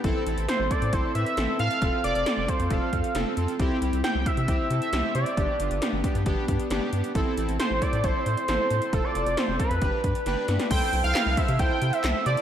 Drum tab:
CC |----------------|----------------|----------------|----------------|
HH |x-xxx-xxx-xxx-xx|x-xxx-xxx-xxx-xx|x-xxx-xxx-xxx-xx|x-xxx-xxx-xxx-xx|
CP |----------------|----------------|----------------|----------------|
SD |----o-------o---|----o-------o---|----o-------o---|----o-------o---|
BD |o-----o-o-------|o-----o-o-o-----|o-----o-o-------|o-----o-o-o-----|

CC |----------------|----------------|x---------------|
HH |x-xxx-xxx-xxx-xx|x-xxx-xxx-xxx-xx|x-xxx-xxx-xxx-xx|
CP |----------------|----------------|----x-------x---|
SD |----o-------o---|----o-------o-oo|----o-------o---|
BD |o-----o-o-------|o-----o-o-o-----|o-----o-o-------|